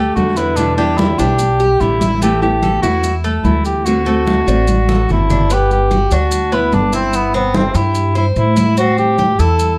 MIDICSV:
0, 0, Header, 1, 7, 480
1, 0, Start_track
1, 0, Key_signature, 1, "major"
1, 0, Tempo, 409836
1, 679, Time_signature, 4, 2, 24, 8
1, 11459, End_track
2, 0, Start_track
2, 0, Title_t, "Cor anglais"
2, 0, Program_c, 0, 69
2, 0, Note_on_c, 0, 67, 83
2, 171, Note_off_c, 0, 67, 0
2, 178, Note_on_c, 0, 66, 79
2, 429, Note_on_c, 0, 64, 77
2, 446, Note_off_c, 0, 66, 0
2, 663, Note_on_c, 0, 62, 80
2, 680, Note_off_c, 0, 64, 0
2, 886, Note_off_c, 0, 62, 0
2, 893, Note_on_c, 0, 62, 80
2, 1141, Note_on_c, 0, 64, 86
2, 1158, Note_off_c, 0, 62, 0
2, 1385, Note_on_c, 0, 67, 91
2, 1403, Note_off_c, 0, 64, 0
2, 2112, Note_on_c, 0, 64, 79
2, 2130, Note_off_c, 0, 67, 0
2, 2596, Note_off_c, 0, 64, 0
2, 2601, Note_on_c, 0, 67, 85
2, 2824, Note_off_c, 0, 67, 0
2, 2837, Note_on_c, 0, 67, 81
2, 3285, Note_off_c, 0, 67, 0
2, 3303, Note_on_c, 0, 66, 78
2, 3685, Note_off_c, 0, 66, 0
2, 4031, Note_on_c, 0, 64, 85
2, 4258, Note_off_c, 0, 64, 0
2, 4279, Note_on_c, 0, 67, 72
2, 4512, Note_on_c, 0, 66, 79
2, 4530, Note_off_c, 0, 67, 0
2, 5956, Note_off_c, 0, 66, 0
2, 5998, Note_on_c, 0, 64, 86
2, 6474, Note_on_c, 0, 67, 97
2, 6491, Note_off_c, 0, 64, 0
2, 6697, Note_off_c, 0, 67, 0
2, 6702, Note_on_c, 0, 67, 80
2, 7185, Note_on_c, 0, 66, 81
2, 7203, Note_off_c, 0, 67, 0
2, 7655, Note_on_c, 0, 64, 76
2, 7672, Note_off_c, 0, 66, 0
2, 7896, Note_on_c, 0, 62, 84
2, 7913, Note_off_c, 0, 64, 0
2, 8128, Note_off_c, 0, 62, 0
2, 8138, Note_on_c, 0, 60, 78
2, 8384, Note_on_c, 0, 59, 88
2, 8402, Note_off_c, 0, 60, 0
2, 8606, Note_off_c, 0, 59, 0
2, 8613, Note_on_c, 0, 59, 85
2, 8857, Note_on_c, 0, 60, 86
2, 8875, Note_off_c, 0, 59, 0
2, 9080, Note_on_c, 0, 64, 83
2, 9098, Note_off_c, 0, 60, 0
2, 9561, Note_off_c, 0, 64, 0
2, 9573, Note_on_c, 0, 64, 83
2, 9679, Note_off_c, 0, 64, 0
2, 9819, Note_on_c, 0, 64, 89
2, 10257, Note_off_c, 0, 64, 0
2, 10291, Note_on_c, 0, 66, 96
2, 10510, Note_off_c, 0, 66, 0
2, 10519, Note_on_c, 0, 67, 97
2, 10997, Note_on_c, 0, 69, 97
2, 11015, Note_off_c, 0, 67, 0
2, 11402, Note_off_c, 0, 69, 0
2, 11459, End_track
3, 0, Start_track
3, 0, Title_t, "Cuban tres"
3, 0, Program_c, 1, 25
3, 0, Note_on_c, 1, 57, 71
3, 424, Note_off_c, 1, 57, 0
3, 438, Note_on_c, 1, 59, 58
3, 905, Note_off_c, 1, 59, 0
3, 912, Note_on_c, 1, 55, 74
3, 1381, Note_off_c, 1, 55, 0
3, 1399, Note_on_c, 1, 62, 58
3, 1865, Note_off_c, 1, 62, 0
3, 1873, Note_on_c, 1, 67, 63
3, 2341, Note_off_c, 1, 67, 0
3, 2354, Note_on_c, 1, 64, 61
3, 2589, Note_off_c, 1, 64, 0
3, 2599, Note_on_c, 1, 57, 64
3, 3065, Note_off_c, 1, 57, 0
3, 3075, Note_on_c, 1, 69, 64
3, 3309, Note_off_c, 1, 69, 0
3, 3314, Note_on_c, 1, 64, 60
3, 3782, Note_off_c, 1, 64, 0
3, 3798, Note_on_c, 1, 57, 73
3, 4264, Note_off_c, 1, 57, 0
3, 4758, Note_on_c, 1, 57, 69
3, 5224, Note_off_c, 1, 57, 0
3, 5243, Note_on_c, 1, 62, 59
3, 5707, Note_off_c, 1, 62, 0
3, 5722, Note_on_c, 1, 69, 60
3, 6187, Note_off_c, 1, 69, 0
3, 6209, Note_on_c, 1, 62, 56
3, 6438, Note_off_c, 1, 62, 0
3, 6449, Note_on_c, 1, 59, 70
3, 6910, Note_off_c, 1, 59, 0
3, 6920, Note_on_c, 1, 66, 62
3, 7153, Note_off_c, 1, 66, 0
3, 7166, Note_on_c, 1, 62, 67
3, 7629, Note_off_c, 1, 62, 0
3, 7638, Note_on_c, 1, 59, 73
3, 8105, Note_off_c, 1, 59, 0
3, 8114, Note_on_c, 1, 64, 66
3, 8583, Note_off_c, 1, 64, 0
3, 8599, Note_on_c, 1, 60, 74
3, 9065, Note_off_c, 1, 60, 0
3, 9073, Note_on_c, 1, 67, 60
3, 9543, Note_off_c, 1, 67, 0
3, 9548, Note_on_c, 1, 72, 65
3, 10020, Note_off_c, 1, 72, 0
3, 10031, Note_on_c, 1, 64, 67
3, 10269, Note_off_c, 1, 64, 0
3, 10276, Note_on_c, 1, 60, 68
3, 10744, Note_off_c, 1, 60, 0
3, 10761, Note_on_c, 1, 67, 60
3, 10994, Note_off_c, 1, 67, 0
3, 11005, Note_on_c, 1, 64, 63
3, 11459, Note_off_c, 1, 64, 0
3, 11459, End_track
4, 0, Start_track
4, 0, Title_t, "Nylon-string guitar"
4, 0, Program_c, 2, 24
4, 187, Note_on_c, 2, 50, 44
4, 199, Note_on_c, 2, 55, 43
4, 204, Note_on_c, 2, 62, 50
4, 216, Note_on_c, 2, 67, 49
4, 658, Note_off_c, 2, 50, 0
4, 660, Note_off_c, 2, 55, 0
4, 660, Note_on_c, 2, 47, 61
4, 672, Note_off_c, 2, 62, 0
4, 672, Note_on_c, 2, 50, 65
4, 674, Note_on_c, 2, 55, 60
4, 678, Note_off_c, 2, 67, 0
4, 686, Note_on_c, 2, 59, 66
4, 687, Note_on_c, 2, 64, 66
4, 894, Note_off_c, 2, 64, 0
4, 900, Note_off_c, 2, 47, 0
4, 903, Note_off_c, 2, 59, 0
4, 906, Note_off_c, 2, 50, 0
4, 907, Note_off_c, 2, 55, 0
4, 908, Note_on_c, 2, 64, 58
4, 918, Note_on_c, 2, 59, 57
4, 923, Note_on_c, 2, 55, 55
4, 934, Note_on_c, 2, 50, 51
4, 1128, Note_off_c, 2, 50, 0
4, 1136, Note_off_c, 2, 55, 0
4, 1142, Note_on_c, 2, 50, 44
4, 1144, Note_off_c, 2, 64, 0
4, 1145, Note_off_c, 2, 59, 0
4, 1150, Note_on_c, 2, 55, 46
4, 1159, Note_on_c, 2, 59, 46
4, 1165, Note_on_c, 2, 64, 51
4, 1370, Note_off_c, 2, 64, 0
4, 1381, Note_off_c, 2, 50, 0
4, 1384, Note_off_c, 2, 59, 0
4, 1384, Note_on_c, 2, 64, 62
4, 1385, Note_off_c, 2, 55, 0
4, 1398, Note_on_c, 2, 59, 59
4, 1406, Note_on_c, 2, 55, 55
4, 1415, Note_on_c, 2, 50, 48
4, 1615, Note_off_c, 2, 50, 0
4, 1622, Note_off_c, 2, 55, 0
4, 1622, Note_off_c, 2, 64, 0
4, 1627, Note_off_c, 2, 59, 0
4, 2114, Note_on_c, 2, 50, 43
4, 2121, Note_on_c, 2, 55, 45
4, 2129, Note_on_c, 2, 59, 47
4, 2136, Note_on_c, 2, 64, 50
4, 2586, Note_off_c, 2, 50, 0
4, 2590, Note_off_c, 2, 55, 0
4, 2590, Note_on_c, 2, 52, 61
4, 2595, Note_off_c, 2, 59, 0
4, 2598, Note_off_c, 2, 64, 0
4, 2601, Note_on_c, 2, 57, 65
4, 2607, Note_on_c, 2, 59, 70
4, 2620, Note_on_c, 2, 64, 64
4, 2818, Note_off_c, 2, 64, 0
4, 2825, Note_off_c, 2, 52, 0
4, 2830, Note_off_c, 2, 57, 0
4, 2832, Note_on_c, 2, 64, 62
4, 2833, Note_off_c, 2, 59, 0
4, 2846, Note_on_c, 2, 59, 57
4, 2861, Note_on_c, 2, 57, 53
4, 3066, Note_off_c, 2, 57, 0
4, 3066, Note_off_c, 2, 64, 0
4, 3068, Note_on_c, 2, 52, 44
4, 3069, Note_off_c, 2, 59, 0
4, 3080, Note_on_c, 2, 57, 46
4, 3083, Note_on_c, 2, 59, 52
4, 3097, Note_on_c, 2, 64, 50
4, 3293, Note_off_c, 2, 64, 0
4, 3304, Note_off_c, 2, 52, 0
4, 3305, Note_off_c, 2, 59, 0
4, 3307, Note_on_c, 2, 64, 60
4, 3310, Note_off_c, 2, 57, 0
4, 3319, Note_on_c, 2, 59, 54
4, 3336, Note_on_c, 2, 57, 53
4, 3543, Note_off_c, 2, 64, 0
4, 3545, Note_off_c, 2, 57, 0
4, 3549, Note_off_c, 2, 59, 0
4, 4024, Note_on_c, 2, 52, 45
4, 4032, Note_on_c, 2, 57, 43
4, 4043, Note_on_c, 2, 59, 47
4, 4048, Note_on_c, 2, 64, 51
4, 4502, Note_off_c, 2, 52, 0
4, 4503, Note_off_c, 2, 57, 0
4, 4512, Note_off_c, 2, 59, 0
4, 4514, Note_off_c, 2, 64, 0
4, 4514, Note_on_c, 2, 50, 66
4, 4518, Note_on_c, 2, 57, 67
4, 4528, Note_on_c, 2, 60, 64
4, 4538, Note_on_c, 2, 66, 77
4, 4728, Note_off_c, 2, 66, 0
4, 4741, Note_off_c, 2, 60, 0
4, 4742, Note_on_c, 2, 66, 55
4, 4747, Note_off_c, 2, 50, 0
4, 4749, Note_off_c, 2, 57, 0
4, 4755, Note_on_c, 2, 60, 55
4, 4771, Note_on_c, 2, 57, 48
4, 4972, Note_on_c, 2, 50, 45
4, 4973, Note_off_c, 2, 57, 0
4, 4979, Note_off_c, 2, 60, 0
4, 4981, Note_off_c, 2, 66, 0
4, 4987, Note_on_c, 2, 57, 50
4, 4993, Note_on_c, 2, 60, 44
4, 5001, Note_on_c, 2, 66, 49
4, 5212, Note_off_c, 2, 66, 0
4, 5216, Note_off_c, 2, 50, 0
4, 5224, Note_off_c, 2, 57, 0
4, 5226, Note_on_c, 2, 66, 62
4, 5227, Note_off_c, 2, 60, 0
4, 5241, Note_on_c, 2, 60, 59
4, 5250, Note_on_c, 2, 57, 47
4, 5463, Note_off_c, 2, 57, 0
4, 5463, Note_off_c, 2, 66, 0
4, 5467, Note_off_c, 2, 60, 0
4, 5952, Note_on_c, 2, 50, 38
4, 5966, Note_on_c, 2, 57, 40
4, 5974, Note_on_c, 2, 60, 47
4, 5980, Note_on_c, 2, 66, 55
4, 6426, Note_off_c, 2, 50, 0
4, 6433, Note_off_c, 2, 57, 0
4, 6438, Note_off_c, 2, 60, 0
4, 6440, Note_off_c, 2, 66, 0
4, 11459, End_track
5, 0, Start_track
5, 0, Title_t, "Upright bass"
5, 0, Program_c, 3, 32
5, 0, Note_on_c, 3, 38, 84
5, 148, Note_off_c, 3, 38, 0
5, 197, Note_on_c, 3, 40, 85
5, 1327, Note_off_c, 3, 40, 0
5, 1396, Note_on_c, 3, 35, 84
5, 2071, Note_off_c, 3, 35, 0
5, 2117, Note_on_c, 3, 33, 86
5, 3247, Note_off_c, 3, 33, 0
5, 3317, Note_on_c, 3, 40, 78
5, 3991, Note_off_c, 3, 40, 0
5, 4035, Note_on_c, 3, 38, 87
5, 5167, Note_off_c, 3, 38, 0
5, 5239, Note_on_c, 3, 33, 84
5, 5913, Note_off_c, 3, 33, 0
5, 5966, Note_on_c, 3, 31, 80
5, 7092, Note_off_c, 3, 31, 0
5, 7158, Note_on_c, 3, 38, 81
5, 7832, Note_off_c, 3, 38, 0
5, 7875, Note_on_c, 3, 31, 89
5, 9007, Note_off_c, 3, 31, 0
5, 9073, Note_on_c, 3, 43, 84
5, 9750, Note_off_c, 3, 43, 0
5, 9795, Note_on_c, 3, 45, 90
5, 10928, Note_off_c, 3, 45, 0
5, 11000, Note_on_c, 3, 40, 84
5, 11459, Note_off_c, 3, 40, 0
5, 11459, End_track
6, 0, Start_track
6, 0, Title_t, "Muted nylon-string guitar strokes"
6, 1624, Note_on_c, 9, 29, 53
6, 1741, Note_off_c, 9, 29, 0
6, 3553, Note_on_c, 9, 29, 53
6, 3670, Note_off_c, 9, 29, 0
6, 5466, Note_on_c, 9, 29, 50
6, 5583, Note_off_c, 9, 29, 0
6, 11459, End_track
7, 0, Start_track
7, 0, Title_t, "Drums"
7, 193, Note_on_c, 9, 70, 26
7, 201, Note_on_c, 9, 63, 63
7, 310, Note_off_c, 9, 70, 0
7, 318, Note_off_c, 9, 63, 0
7, 428, Note_on_c, 9, 70, 63
7, 436, Note_on_c, 9, 63, 33
7, 545, Note_off_c, 9, 70, 0
7, 553, Note_off_c, 9, 63, 0
7, 663, Note_on_c, 9, 70, 75
7, 687, Note_on_c, 9, 63, 30
7, 780, Note_off_c, 9, 70, 0
7, 804, Note_off_c, 9, 63, 0
7, 907, Note_on_c, 9, 70, 25
7, 923, Note_on_c, 9, 63, 27
7, 1024, Note_off_c, 9, 70, 0
7, 1040, Note_off_c, 9, 63, 0
7, 1145, Note_on_c, 9, 70, 27
7, 1159, Note_on_c, 9, 63, 80
7, 1262, Note_off_c, 9, 70, 0
7, 1276, Note_off_c, 9, 63, 0
7, 1393, Note_on_c, 9, 70, 63
7, 1395, Note_on_c, 9, 63, 29
7, 1510, Note_off_c, 9, 70, 0
7, 1512, Note_off_c, 9, 63, 0
7, 1624, Note_on_c, 9, 70, 79
7, 1637, Note_on_c, 9, 63, 27
7, 1741, Note_off_c, 9, 70, 0
7, 1754, Note_off_c, 9, 63, 0
7, 1867, Note_on_c, 9, 63, 31
7, 1869, Note_on_c, 9, 70, 28
7, 1984, Note_off_c, 9, 63, 0
7, 1987, Note_off_c, 9, 70, 0
7, 2112, Note_on_c, 9, 70, 27
7, 2114, Note_on_c, 9, 63, 31
7, 2229, Note_off_c, 9, 70, 0
7, 2231, Note_off_c, 9, 63, 0
7, 2353, Note_on_c, 9, 63, 75
7, 2362, Note_on_c, 9, 70, 65
7, 2470, Note_off_c, 9, 63, 0
7, 2479, Note_off_c, 9, 70, 0
7, 2600, Note_on_c, 9, 63, 29
7, 2601, Note_on_c, 9, 70, 68
7, 2717, Note_off_c, 9, 63, 0
7, 2718, Note_off_c, 9, 70, 0
7, 2837, Note_on_c, 9, 63, 28
7, 2839, Note_on_c, 9, 70, 24
7, 2954, Note_off_c, 9, 63, 0
7, 2956, Note_off_c, 9, 70, 0
7, 3076, Note_on_c, 9, 63, 51
7, 3084, Note_on_c, 9, 70, 29
7, 3193, Note_off_c, 9, 63, 0
7, 3201, Note_off_c, 9, 70, 0
7, 3317, Note_on_c, 9, 70, 66
7, 3319, Note_on_c, 9, 63, 32
7, 3434, Note_off_c, 9, 70, 0
7, 3436, Note_off_c, 9, 63, 0
7, 3548, Note_on_c, 9, 63, 28
7, 3556, Note_on_c, 9, 70, 80
7, 3665, Note_off_c, 9, 63, 0
7, 3673, Note_off_c, 9, 70, 0
7, 3798, Note_on_c, 9, 70, 27
7, 3800, Note_on_c, 9, 63, 28
7, 3915, Note_off_c, 9, 70, 0
7, 3917, Note_off_c, 9, 63, 0
7, 4036, Note_on_c, 9, 70, 25
7, 4038, Note_on_c, 9, 63, 63
7, 4153, Note_off_c, 9, 70, 0
7, 4155, Note_off_c, 9, 63, 0
7, 4273, Note_on_c, 9, 70, 64
7, 4278, Note_on_c, 9, 63, 32
7, 4390, Note_off_c, 9, 70, 0
7, 4395, Note_off_c, 9, 63, 0
7, 4522, Note_on_c, 9, 63, 33
7, 4522, Note_on_c, 9, 70, 74
7, 4639, Note_off_c, 9, 63, 0
7, 4639, Note_off_c, 9, 70, 0
7, 4756, Note_on_c, 9, 70, 27
7, 4762, Note_on_c, 9, 63, 28
7, 4874, Note_off_c, 9, 70, 0
7, 4879, Note_off_c, 9, 63, 0
7, 4996, Note_on_c, 9, 70, 30
7, 5007, Note_on_c, 9, 63, 80
7, 5113, Note_off_c, 9, 70, 0
7, 5124, Note_off_c, 9, 63, 0
7, 5245, Note_on_c, 9, 70, 58
7, 5248, Note_on_c, 9, 63, 32
7, 5362, Note_off_c, 9, 70, 0
7, 5365, Note_off_c, 9, 63, 0
7, 5474, Note_on_c, 9, 70, 71
7, 5488, Note_on_c, 9, 63, 68
7, 5591, Note_off_c, 9, 70, 0
7, 5605, Note_off_c, 9, 63, 0
7, 5725, Note_on_c, 9, 63, 71
7, 5725, Note_on_c, 9, 70, 28
7, 5842, Note_off_c, 9, 63, 0
7, 5842, Note_off_c, 9, 70, 0
7, 5960, Note_on_c, 9, 70, 26
7, 5977, Note_on_c, 9, 64, 62
7, 6077, Note_off_c, 9, 70, 0
7, 6094, Note_off_c, 9, 64, 0
7, 6206, Note_on_c, 9, 70, 62
7, 6210, Note_on_c, 9, 64, 82
7, 6323, Note_off_c, 9, 70, 0
7, 6327, Note_off_c, 9, 64, 0
7, 6443, Note_on_c, 9, 70, 72
7, 6452, Note_on_c, 9, 63, 31
7, 6560, Note_off_c, 9, 70, 0
7, 6569, Note_off_c, 9, 63, 0
7, 6687, Note_on_c, 9, 63, 30
7, 6687, Note_on_c, 9, 70, 27
7, 6804, Note_off_c, 9, 63, 0
7, 6804, Note_off_c, 9, 70, 0
7, 6921, Note_on_c, 9, 70, 30
7, 6923, Note_on_c, 9, 63, 52
7, 7038, Note_off_c, 9, 70, 0
7, 7040, Note_off_c, 9, 63, 0
7, 7155, Note_on_c, 9, 70, 64
7, 7159, Note_on_c, 9, 63, 32
7, 7272, Note_off_c, 9, 70, 0
7, 7276, Note_off_c, 9, 63, 0
7, 7395, Note_on_c, 9, 70, 87
7, 7407, Note_on_c, 9, 63, 28
7, 7512, Note_off_c, 9, 70, 0
7, 7524, Note_off_c, 9, 63, 0
7, 7636, Note_on_c, 9, 70, 26
7, 7641, Note_on_c, 9, 63, 29
7, 7753, Note_off_c, 9, 70, 0
7, 7758, Note_off_c, 9, 63, 0
7, 7874, Note_on_c, 9, 70, 28
7, 7880, Note_on_c, 9, 63, 73
7, 7991, Note_off_c, 9, 70, 0
7, 7997, Note_off_c, 9, 63, 0
7, 8113, Note_on_c, 9, 70, 66
7, 8126, Note_on_c, 9, 63, 34
7, 8230, Note_off_c, 9, 70, 0
7, 8243, Note_off_c, 9, 63, 0
7, 8353, Note_on_c, 9, 70, 73
7, 8360, Note_on_c, 9, 63, 30
7, 8471, Note_off_c, 9, 70, 0
7, 8477, Note_off_c, 9, 63, 0
7, 8594, Note_on_c, 9, 70, 27
7, 8604, Note_on_c, 9, 63, 27
7, 8712, Note_off_c, 9, 70, 0
7, 8721, Note_off_c, 9, 63, 0
7, 8836, Note_on_c, 9, 63, 91
7, 8839, Note_on_c, 9, 70, 28
7, 8953, Note_off_c, 9, 63, 0
7, 8956, Note_off_c, 9, 70, 0
7, 9072, Note_on_c, 9, 70, 67
7, 9088, Note_on_c, 9, 63, 33
7, 9189, Note_off_c, 9, 70, 0
7, 9206, Note_off_c, 9, 63, 0
7, 9308, Note_on_c, 9, 70, 75
7, 9326, Note_on_c, 9, 63, 29
7, 9425, Note_off_c, 9, 70, 0
7, 9443, Note_off_c, 9, 63, 0
7, 9551, Note_on_c, 9, 70, 28
7, 9562, Note_on_c, 9, 63, 31
7, 9668, Note_off_c, 9, 70, 0
7, 9679, Note_off_c, 9, 63, 0
7, 9790, Note_on_c, 9, 70, 26
7, 9809, Note_on_c, 9, 63, 31
7, 9907, Note_off_c, 9, 70, 0
7, 9926, Note_off_c, 9, 63, 0
7, 10031, Note_on_c, 9, 70, 67
7, 10040, Note_on_c, 9, 63, 76
7, 10148, Note_off_c, 9, 70, 0
7, 10158, Note_off_c, 9, 63, 0
7, 10273, Note_on_c, 9, 70, 78
7, 10289, Note_on_c, 9, 63, 30
7, 10390, Note_off_c, 9, 70, 0
7, 10406, Note_off_c, 9, 63, 0
7, 10514, Note_on_c, 9, 70, 26
7, 10525, Note_on_c, 9, 63, 28
7, 10631, Note_off_c, 9, 70, 0
7, 10642, Note_off_c, 9, 63, 0
7, 10751, Note_on_c, 9, 70, 29
7, 10760, Note_on_c, 9, 63, 56
7, 10868, Note_off_c, 9, 70, 0
7, 10877, Note_off_c, 9, 63, 0
7, 10994, Note_on_c, 9, 63, 29
7, 11000, Note_on_c, 9, 70, 66
7, 11111, Note_off_c, 9, 63, 0
7, 11117, Note_off_c, 9, 70, 0
7, 11235, Note_on_c, 9, 70, 83
7, 11248, Note_on_c, 9, 63, 28
7, 11352, Note_off_c, 9, 70, 0
7, 11365, Note_off_c, 9, 63, 0
7, 11459, End_track
0, 0, End_of_file